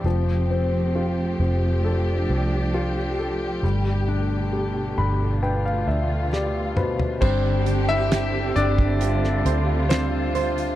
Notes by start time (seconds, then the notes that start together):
0.04 F1 F3 A3 C4 G4
0.50 C4
0.95 F4
1.39 F1 C4
1.84 D4 A4
2.29 C2 C5
2.74 F4
3.19 A4
3.63 G1 B2 D3 G3 A3
4.08 D4
4.52 G4
4.98 G1 D4 B5
5.42 F4 B4 G5
5.65 F5
5.87 D2 D5 E5
6.33 G4 D5, snare
6.77 B2 B4 C5, mid tom
6.99 floor tom
7.21 G1 D3 G3 C4 D4 G4 C5, kick, crash
7.66 D4, closed hi-hat
7.89 E4 E5
8.11 G4, snare, closed hi-hat
8.56 G1 D4 D5, closed hi-hat
8.78 kick
9.01 F4 G4, closed hi-hat
9.24 snare
9.45 D2 C5, closed hi-hat
9.89 C4 D4 C5, snare, closed hi-hat
10.35 C5, closed hi-hat
10.58 closed hi-hat